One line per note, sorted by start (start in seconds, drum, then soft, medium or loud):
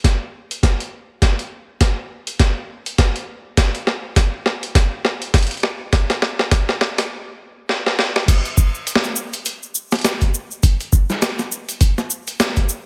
0.04 kick loud
0.04 snare soft
0.04 closed hi-hat medium
0.51 closed hi-hat medium
0.63 kick medium
0.63 snare medium
0.63 closed hi-hat medium
0.80 closed hi-hat soft
1.22 kick medium
1.22 snare medium
1.22 closed hi-hat medium
1.39 closed hi-hat soft
1.81 kick medium
1.81 snare medium
1.81 closed hi-hat medium
2.27 closed hi-hat medium
2.39 kick loud
2.39 snare medium
2.39 closed hi-hat medium
2.86 closed hi-hat medium
2.98 kick loud
2.98 snare medium
2.98 closed hi-hat medium
3.16 closed hi-hat soft
3.57 kick loud
3.57 snare medium
3.57 closed hi-hat medium
3.75 closed hi-hat soft
3.87 snare medium
4.16 kick medium
4.16 snare medium
4.16 closed hi-hat medium
4.46 snare medium
4.63 closed hi-hat medium
4.75 kick loud
4.75 snare medium
4.75 closed hi-hat medium
5.05 snare medium
5.22 closed hi-hat medium
5.34 kick loud
5.34 snare medium
5.34 closed hi-hat medium
5.38 closed hi-hat medium
5.42 closed hi-hat soft
5.47 closed hi-hat soft
5.51 closed hi-hat soft
5.54 closed hi-hat soft
5.57 closed hi-hat soft
5.60 snare medium
5.60 closed hi-hat soft
5.93 kick loud
5.93 snare medium
5.93 closed hi-hat medium
6.10 snare medium
6.10 closed hi-hat soft
6.22 snare medium
6.39 snare medium
6.51 kick loud
6.51 snare medium
6.51 closed hi-hat medium
6.69 snare medium
6.81 snare loud
6.98 snare medium
6.98 closed hi-hat medium
7.69 snare medium
7.86 snare medium
7.99 snare medium
8.16 snare medium
8.28 kick loud
8.28 closed hi-hat medium
8.28 crash loud
8.28 cabasa soft
8.45 closed hi-hat soft
8.45 cabasa soft
8.57 kick loud
8.57 cabasa medium
8.75 cabasa soft
8.87 closed hi-hat medium
8.87 cabasa soft
8.95 snare loud
9.04 cabasa soft
9.16 cabasa medium
9.33 closed hi-hat medium
9.33 cabasa soft
9.45 closed hi-hat medium
9.45 cabasa medium
9.63 cabasa soft
9.75 cabasa medium
9.91 snare medium
9.91 closed hi-hat soft
9.91 cabasa soft
9.95 closed hi-hat soft
9.99 closed hi-hat soft
10.01 snare loud
10.01 closed hi-hat soft
10.04 closed hi-hat medium
10.04 cabasa medium
10.21 kick medium
10.21 closed hi-hat soft
10.21 cabasa soft
10.34 cabasa medium
10.51 cabasa soft
10.63 kick loud
10.63 closed hi-hat medium
10.63 cabasa medium
10.80 closed hi-hat soft
10.80 cabasa soft
10.93 kick loud
10.93 cabasa medium
11.09 snare soft
11.09 cabasa soft
11.22 snare loud
11.22 closed hi-hat medium
11.22 cabasa medium
11.39 snare soft
11.39 cabasa soft
11.52 cabasa loud
11.69 closed hi-hat medium
11.69 cabasa soft
11.81 kick loud
11.81 closed hi-hat medium
11.81 cabasa medium
11.98 snare soft
11.98 cabasa soft
12.10 cabasa loud
12.27 closed hi-hat medium
12.27 cabasa soft
12.40 snare loud
12.40 closed hi-hat medium
12.40 cabasa medium
12.56 kick medium
12.56 closed hi-hat soft
12.56 cabasa soft
12.69 cabasa medium